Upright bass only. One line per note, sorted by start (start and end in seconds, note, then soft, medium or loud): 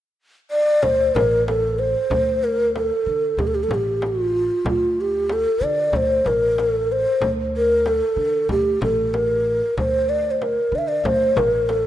0.83 1.09 D2 medium
1.15 1.93 A1 medium
2.10 2.89 D2 medium
3.06 3.33 D3 medium
3.37 3.64 D2 medium
3.69 4.48 A1 medium
4.65 5.44 D2 medium
5.61 5.88 D3 medium
5.92 6.19 D2 medium
6.25 7.04 A1 medium
7.21 8.00 D2 medium
8.16 8.43 D3 medium
8.48 8.75 D2 medium
8.81 9.59 A1 medium
9.77 10.56 D2 medium
10.72 10.98 D3 medium
11.04 11.30 D2 medium
11.36 11.87 A1 medium